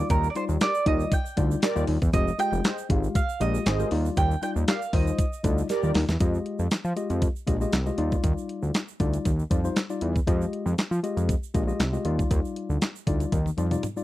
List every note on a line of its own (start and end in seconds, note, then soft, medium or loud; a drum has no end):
0.00 0.26 G3 medium
0.00 0.26 D#4 medium
0.00 0.26 F4 medium
0.00 0.26 D5 medium
0.10 0.28 D#2 loud
0.10 0.30 A#4 medium
0.10 kick loud
0.10 closed hi-hat medium
0.10 shaker medium
0.24 shaker soft
0.30 0.36 D5 medium
0.35 0.65 G3 medium
0.35 0.66 D#4 medium
0.35 0.66 F4 medium
0.35 0.43 C5 medium
0.35 0.66 D5 medium
0.35 closed hi-hat medium
0.35 shaker medium
0.49 0.58 D#2 medium
0.49 shaker medium
0.61 0.72 G4 medium
0.61 0.72 A#4 medium
0.61 0.72 D5 medium
0.61 0.85 D5 medium
0.61 snare loud
0.61 clap medium
0.61 closed hi-hat medium
0.61 shaker medium
0.74 shaker medium
0.86 1.04 D#2 loud
0.86 1.16 G3 medium
0.86 1.16 D#4 medium
0.86 1.16 F4 medium
0.86 1.16 D5 medium
0.86 1.13 D#5 medium
0.86 kick loud
0.86 closed hi-hat medium
1.00 shaker medium
1.12 1.85 G5 medium
1.12 kick loud
1.12 closed hi-hat loud
1.12 shaker medium
1.26 shaker medium
1.37 1.55 D2 medium
1.37 1.59 G3 medium
1.37 1.60 D#4 medium
1.37 1.60 F4 medium
1.37 1.60 D5 medium
1.37 kick medium
1.37 closed hi-hat medium
1.37 shaker medium
1.51 shaker medium
1.62 1.84 G4 loud
1.62 1.84 A#4 loud
1.62 1.84 D5 loud
1.62 snare loud
1.62 clap loud
1.62 closed hi-hat medium
1.62 shaker medium
1.75 1.85 D#2 medium
1.75 1.98 G3 medium
1.75 1.98 D#4 medium
1.75 1.98 F4 medium
1.75 1.98 D5 medium
1.75 shaker medium
1.87 1.98 D#2 medium
1.87 open hi-hat medium
2.02 2.10 E2 medium
2.02 kick loud
2.02 shaker medium
2.13 2.32 F1 loud
2.13 2.29 G#3 medium
2.13 2.29 F4 medium
2.13 2.29 G4 medium
2.13 2.40 D#5 medium
2.13 2.29 D#5 medium
2.13 kick loud
2.13 closed hi-hat medium
2.13 shaker medium
2.28 shaker soft
2.39 2.69 G#3 medium
2.39 2.69 F4 medium
2.39 2.69 G4 medium
2.39 2.69 D#5 medium
2.39 2.87 G5 loud
2.39 closed hi-hat medium
2.39 shaker medium
2.52 2.61 F1 loud
2.52 shaker medium
2.64 2.76 G#4 medium
2.64 2.76 C5 medium
2.64 2.76 D#5 medium
2.64 snare loud
2.64 clap medium
2.64 closed hi-hat medium
2.64 shaker medium
2.78 shaker medium
2.89 3.08 G#1 loud
2.89 3.20 G#3 medium
2.89 3.20 F4 medium
2.89 3.20 G4 medium
2.89 3.20 F5 medium
2.89 kick loud
2.89 closed hi-hat medium
3.04 shaker medium
3.15 3.42 F5 loud
3.15 kick loud
3.15 closed hi-hat loud
3.15 shaker medium
3.29 shaker medium
3.40 3.59 A#1 loud
3.40 3.63 G#3 medium
3.40 3.63 F4 medium
3.40 3.63 G4 medium
3.40 3.63 D#5 medium
3.40 3.88 D#5 loud
3.40 closed hi-hat medium
3.40 shaker medium
3.54 shaker medium
3.66 3.84 G#1 loud
3.66 3.88 G#4 loud
3.66 3.88 C5 loud
3.66 3.88 D#5 loud
3.66 snare loud
3.66 clap medium
3.66 closed hi-hat medium
3.66 shaker medium
3.79 3.91 G#3 medium
3.79 3.91 F4 medium
3.79 3.92 G4 medium
3.79 3.92 A#4 medium
3.79 shaker medium
3.91 4.10 D#2 medium
3.91 4.33 G3 medium
3.91 4.33 D#4 medium
3.91 4.33 F4 medium
3.91 4.33 D5 medium
3.91 open hi-hat medium
4.06 shaker medium
4.17 4.35 D#2 loud
4.17 4.42 G5 loud
4.17 kick loud
4.17 closed hi-hat medium
4.17 shaker medium
4.31 shaker soft
4.42 4.72 G3 medium
4.42 4.72 D#4 medium
4.42 4.72 F4 medium
4.42 4.73 D5 medium
4.42 4.50 G5 loud
4.42 closed hi-hat medium
4.42 shaker medium
4.56 4.64 D#2 medium
4.56 shaker medium
4.68 4.79 G4 medium
4.68 4.79 A#4 medium
4.68 4.79 D5 medium
4.68 4.92 F5 medium
4.68 snare loud
4.68 clap medium
4.68 closed hi-hat medium
4.68 shaker medium
4.82 shaker medium
4.93 5.11 D#2 medium
4.93 5.23 G3 medium
4.93 5.23 D#4 medium
4.93 5.23 F4 medium
4.93 5.24 C5 medium
4.93 5.66 D#5 medium
4.93 kick loud
4.93 open hi-hat medium
5.07 shaker medium
5.18 kick loud
5.18 closed hi-hat loud
5.18 shaker medium
5.33 shaker medium
5.44 5.62 D2 loud
5.44 5.66 G3 medium
5.44 5.67 D#4 medium
5.44 5.67 F4 medium
5.44 5.67 D5 medium
5.44 kick medium
5.44 closed hi-hat medium
5.44 shaker medium
5.58 shaker medium
5.69 5.91 G4 loud
5.69 5.91 A#4 loud
5.69 5.91 D5 loud
5.69 snare medium
5.69 closed hi-hat medium
5.69 shaker medium
5.83 5.92 D#2 medium
5.83 6.05 G3 medium
5.83 6.05 D#4 medium
5.83 6.05 F4 medium
5.83 6.05 D5 loud
5.83 shaker medium
5.94 6.05 D#2 medium
5.94 snare loud
5.94 open hi-hat medium
6.09 6.17 E2 medium
6.09 snare loud
6.09 shaker medium
6.20 6.39 F2 loud
6.20 6.65 G#3 medium
6.20 6.65 F4 medium
6.20 6.65 G4 medium
6.20 6.66 D#5 medium
6.20 kick loud
6.20 closed hi-hat medium
6.20 shaker medium
6.34 shaker soft
6.46 closed hi-hat medium
6.59 6.68 F2 loud
6.59 shaker soft
6.71 6.77 F3 soft
6.71 snare loud
6.71 clap medium
6.71 closed hi-hat medium
6.71 shaker medium
6.85 6.93 F3 medium
6.85 shaker medium
6.96 7.26 G#3 medium
6.96 7.27 F4 medium
6.96 7.27 G4 medium
6.96 7.27 D#5 medium
6.96 closed hi-hat medium
6.96 shaker soft
7.10 7.28 F2 medium
7.10 closed hi-hat medium
7.10 shaker soft
7.22 kick loud
7.22 closed hi-hat medium
7.22 shaker medium
7.36 shaker medium
7.47 7.66 A#1 medium
7.47 7.55 G#3 medium
7.47 7.55 F4 medium
7.47 7.55 G4 medium
7.47 7.55 D#5 medium
7.47 kick medium
7.47 closed hi-hat medium
7.47 shaker soft
7.61 7.75 G#3 medium
7.61 7.75 F4 medium
7.61 7.75 G4 medium
7.61 7.75 D#5 medium
7.61 shaker medium
7.73 7.91 C2 medium
7.73 snare loud
7.73 clap medium
7.73 closed hi-hat medium
7.73 shaker medium
7.86 7.98 G#3 medium
7.86 7.97 F4 medium
7.86 7.98 G4 medium
7.86 7.99 D#5 medium
7.86 shaker soft
7.98 8.16 D#2 medium
7.98 8.80 G3 medium
7.98 8.80 D#4 medium
7.98 8.80 F4 medium
7.98 8.80 D5 loud
7.98 closed hi-hat medium
8.12 kick medium
8.12 shaker soft
8.24 8.33 D#2 loud
8.24 kick medium
8.24 closed hi-hat medium
8.24 shaker medium
8.38 shaker soft
8.49 closed hi-hat medium
8.63 8.71 D2 medium
8.63 shaker soft
8.74 snare loud
8.74 clap medium
8.74 closed hi-hat medium
8.74 shaker medium
8.88 shaker medium
9.00 9.18 D2 medium
9.00 9.30 G3 medium
9.00 9.30 D#4 medium
9.00 9.30 F4 medium
9.00 9.30 D5 medium
9.00 kick medium
9.00 closed hi-hat medium
9.00 shaker soft
9.13 closed hi-hat medium
9.13 shaker medium
9.25 9.44 D#2 medium
9.25 kick loud
9.25 closed hi-hat medium
9.25 shaker medium
9.39 shaker soft
9.50 9.69 F2 medium
9.50 9.58 G3 medium
9.50 9.59 D#4 medium
9.50 9.59 F4 medium
9.50 9.59 D5 medium
9.50 kick medium
9.50 closed hi-hat medium
9.50 shaker medium
9.64 9.78 G3 medium
9.64 9.79 D#4 medium
9.64 9.79 F4 medium
9.64 9.79 C5 medium
9.64 shaker medium
9.76 snare loud
9.76 clap medium
9.76 closed hi-hat medium
9.76 shaker medium
9.89 10.12 G3 medium
9.89 10.12 D#4 medium
9.89 10.12 F4 medium
9.89 10.12 D5 medium
9.89 shaker soft
10.01 10.20 E2 medium
10.01 closed hi-hat medium
10.16 kick medium
10.16 shaker soft
10.27 10.45 F2 loud
10.27 10.72 G#3 medium
10.27 10.72 F4 medium
10.27 10.72 G4 medium
10.27 10.72 D#5 medium
10.27 kick loud
10.27 closed hi-hat medium
10.27 shaker medium
10.41 shaker soft
10.53 closed hi-hat medium
10.66 10.74 F2 loud
10.66 shaker soft
10.78 10.83 F3 soft
10.78 snare loud
10.78 clap medium
10.78 closed hi-hat medium
10.78 shaker medium
10.91 11.00 F3 medium
10.91 shaker medium
11.03 11.33 G#3 medium
11.03 11.33 F4 medium
11.03 11.33 G4 medium
11.03 11.34 D#5 medium
11.03 closed hi-hat medium
11.03 shaker soft
11.17 11.35 F2 medium
11.17 closed hi-hat medium
11.17 shaker medium
11.29 kick loud
11.29 closed hi-hat medium
11.29 shaker medium
11.43 shaker medium
11.54 11.73 A#1 medium
11.54 11.62 G#3 medium
11.54 11.62 F4 medium
11.54 11.62 G4 medium
11.54 11.62 D#5 medium
11.54 kick medium
11.54 closed hi-hat medium
11.54 shaker soft
11.67 11.82 G#3 medium
11.67 11.82 F4 medium
11.67 11.82 G4 medium
11.67 11.82 D#5 medium
11.67 shaker medium
11.80 11.98 C2 medium
11.80 snare loud
11.80 clap medium
11.80 closed hi-hat medium
11.80 shaker medium
11.93 12.05 G#3 medium
11.93 12.04 F4 medium
11.93 12.05 G4 medium
11.93 12.05 D#5 medium
11.93 shaker soft
12.05 12.23 D#2 medium
12.05 12.87 G3 medium
12.05 12.87 D#4 medium
12.05 12.87 F4 medium
12.05 12.87 D5 loud
12.05 closed hi-hat medium
12.19 kick medium
12.19 shaker soft
12.31 12.40 D#2 loud
12.31 kick loud
12.31 closed hi-hat medium
12.31 shaker medium
12.45 shaker soft
12.56 closed hi-hat medium
12.70 12.78 D2 medium
12.70 shaker soft
12.82 snare loud
12.82 clap medium
12.82 closed hi-hat medium
12.82 shaker medium
12.96 shaker medium
13.07 13.25 D2 medium
13.07 13.37 G3 medium
13.07 13.37 D#4 medium
13.07 13.37 F4 medium
13.07 13.37 D5 medium
13.07 kick loud
13.07 closed hi-hat medium
13.07 shaker soft
13.20 closed hi-hat medium
13.20 shaker medium
13.32 13.50 D#2 loud
13.32 kick loud
13.32 closed hi-hat medium
13.32 high tom medium
13.32 shaker medium
13.46 high tom medium
13.46 shaker medium
13.57 13.76 F2 medium
13.57 13.65 G3 medium
13.57 13.65 D#4 medium
13.57 13.66 F4 medium
13.57 13.66 D5 medium
13.57 closed hi-hat medium
13.57 shaker medium
13.71 13.85 G3 medium
13.71 13.85 D#4 medium
13.71 13.85 F4 medium
13.71 13.86 D5 medium
13.71 closed hi-hat medium
13.71 mid tom medium
13.71 shaker medium
13.83 closed hi-hat medium
13.83 mid tom medium
13.83 shaker medium
13.96 14.04 G3 medium
13.96 14.04 D#4 medium
13.96 14.04 F4 medium
13.96 14.04 D5 medium
13.96 shaker soft